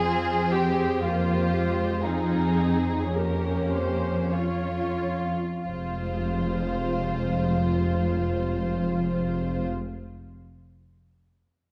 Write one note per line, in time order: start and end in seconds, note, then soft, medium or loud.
0.00 5.33 F2 soft
0.00 0.50 G#4 medium
0.04 1.01 C4 soft
0.04 0.53 F4 soft
0.04 1.00 C5 soft
0.53 1.03 G4 medium
0.53 1.03 G#4 soft
1.02 1.54 A#3 soft
1.02 2.05 F4 medium
1.02 2.06 G4 soft
1.02 2.04 C5 soft
1.55 2.05 G#3 soft
2.05 3.14 C4 soft
2.05 3.14 D#4 soft
2.05 2.58 F4 soft
2.05 3.13 G#4 soft
2.60 3.14 G#4 soft
3.12 4.35 A#3 soft
3.12 4.30 C#4 soft
3.12 4.34 G4 soft
3.12 3.71 A#4 soft
3.71 4.33 C5 soft
4.33 5.38 C#4 soft
4.33 5.63 F4 soft
4.33 5.38 F4 soft
4.33 5.37 C#5 soft
5.64 9.67 F1 soft
5.64 9.66 F2 soft
5.64 9.68 G#3 soft
5.64 9.65 F4 soft
5.64 9.67 F4 soft
5.64 9.68 C5 soft